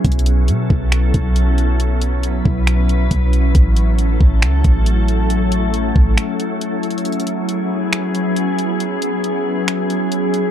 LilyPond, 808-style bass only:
\new Staff \with { instrumentName = "808-style bass" } { \clef bass \time 4/4 \key e \major \tempo 4 = 137 b,,4 b,8 b,,4 b,,4.~ | b,,4. b,,4. b,,4 | a,,4. a,,8 cis,8 a,,4.~ | a,,4. a,,8 r2 |
r1 | r1 | }